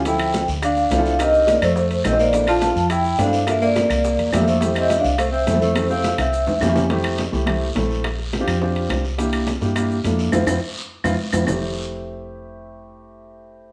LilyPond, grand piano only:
\new Staff \with { instrumentName = "Grand piano" } { \time 4/4 \key f \major \tempo 4 = 210 <f c' e' a'>4. r4. <c' e' f' a'>16 <c' e' f' a'>8 r16 | <d' ees' g' bes'>4. r4. <c' ees' ges' a'>16 <c' ees' ges' c''>8 r16 | <c' d' e' a'>4. r4. <c' d' e' a'>16 <c' d' e' a'>8 r16 | <bes d' f' a'>4. r4. <bes d' e' g'>16 <bes d' e' a'>8 r16 |
<a c' e' g'>4. r4. <a c' e' a'>16 <a c' e' a'>8 r16 | <a c' e' a'>4. r4. <bes des' e' g'>16 <bes des' e' g'>8 r16 | <a c' e' g'>4 r8 <a c' e' g'>16 r16 <a c' e' g'>8. r16 <a c' e' a'>4 | r4 r16 <c' d' f' g'>8 r16 <c' d' f' g'>4. r8 |
<bes d' e' g'>4 r8 <bes d' e' g'>16 r16 <bes d' e' g'>8. r16 <bes d' e' a'>4 | <c' e' f'>8 <c' e' f'>8 r4. <c' e' f'>8 r8 <c' e' f'>8 | <a c' e' g'>1~ | <a c' e' g'>1 | }